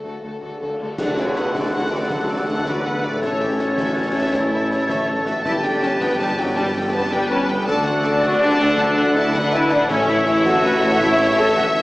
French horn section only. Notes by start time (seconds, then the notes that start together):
0.99 D4
1.17 C#4
1.37 B3
1.55 A3
1.74 F#3
1.91 E3
2.10 F#3
2.38 G3
2.46 A3
2.65 F#3
2.83 B3
3.03 A3
3.21 C#4
5.45 E4
5.64 D4
5.82 C#4
6.02 B3
6.22 G3
6.37 F#3
6.57 G3
6.86 A3
6.93 B3
7.13 G3
7.31 C#4
7.51 B3
7.69 D4
9.17 E4
9.38 D4
9.54 E4
9.71 D4
9.88 C#4
10.09 E4
10.27 E4
10.46 F#4
11.01 E4
11.19 E4
11.39 A4
11.56 F#4
11.76 E4